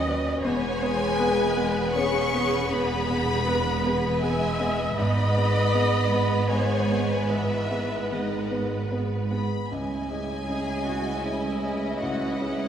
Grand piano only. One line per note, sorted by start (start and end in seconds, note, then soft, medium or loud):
0.00 0.46 D#2 medium
0.00 0.08 C#4 medium
0.00 0.09 F#4 medium
0.00 0.09 B4 medium
0.08 0.41 C#4 medium
0.08 0.41 F#4 medium
0.08 0.41 B4 medium
0.45 0.80 E2 medium
0.82 1.15 B3 medium
0.82 1.15 G#4 medium
0.82 1.15 B4 medium
1.19 1.53 B3 medium
1.19 1.54 G#4 medium
1.19 1.54 B4 medium
1.57 1.92 B3 medium
1.57 1.92 G#4 medium
1.57 1.92 B4 medium
1.96 2.30 B3 medium
1.96 2.30 G#4 medium
1.96 2.31 B4 medium
2.34 2.68 B3 medium
2.34 2.68 G#4 medium
2.34 2.68 B4 medium
2.72 3.08 E2 medium
3.10 3.43 B3 medium
3.10 3.44 G#4 medium
3.10 3.44 B4 medium
3.48 3.81 B3 medium
3.48 3.81 G#4 medium
3.48 3.82 B4 medium
3.86 4.19 B3 medium
3.86 4.19 G#4 medium
3.86 4.20 B4 medium
4.23 4.56 B3 medium
4.23 4.56 G#4 medium
4.23 4.57 B4 medium
4.60 4.93 B3 medium
4.60 4.94 G#4 medium
4.60 4.94 B4 medium
4.98 5.34 G#2 medium
5.37 5.70 B3 medium
5.37 5.70 G#4 medium
5.37 5.71 B4 medium
5.74 6.08 B3 medium
5.74 6.08 G#4 medium
5.74 6.09 B4 medium
6.12 6.47 B3 soft
6.12 6.47 G#4 medium
6.12 6.48 B4 medium
6.52 6.87 B3 soft
6.52 6.87 G#4 soft
6.52 6.88 B4 medium
6.91 7.27 B3 soft
6.91 7.27 G#4 soft
6.91 7.27 B4 medium
7.30 7.69 G#2 medium
7.71 8.07 B3 soft
7.71 8.07 G#4 soft
7.71 8.08 B4 medium
8.11 8.48 B3 soft
8.11 8.48 G#4 soft
8.11 8.48 B4 medium
8.51 8.87 B3 soft
8.51 8.88 G#4 soft
8.51 8.88 B4 medium
8.91 9.27 B3 soft
8.91 9.27 G#4 soft
8.91 9.28 B4 soft
9.31 9.66 B3 soft
9.31 9.67 G#4 soft
9.31 9.67 B4 medium
9.72 10.08 C#2 medium
10.10 10.44 C#4 soft
10.10 10.44 G#4 soft
10.10 10.44 D#5 soft
10.49 10.82 C#4 soft
10.49 10.82 G#4 soft
10.49 10.83 D#5 soft
10.87 11.20 C#4 soft
10.87 11.20 G#4 soft
10.87 11.20 D#5 soft
11.24 11.58 C#4 soft
11.24 11.58 G#4 soft
11.24 11.58 D#5 soft
11.64 11.97 C#4 soft
11.64 11.97 G#4 soft
11.64 11.97 D#5 soft
12.02 12.38 C#2 medium
12.40 12.68 C#4 soft
12.40 12.68 G#4 soft
12.40 12.68 D#5 soft